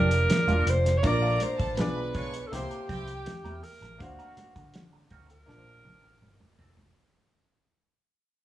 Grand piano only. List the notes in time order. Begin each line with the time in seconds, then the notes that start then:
Already playing: A#3 D4 F4 G4 D5
1.03 A#3 D4 F4 A#4 D5
1.77 B3 D4 F4 G#4
1.81 D5
2.52 A#3 C4 E4 G4 C5
3.98 A#3 D4 F#4 C5 F5
5.46 A#3 D4 F4 A#4 A5
5.57 C5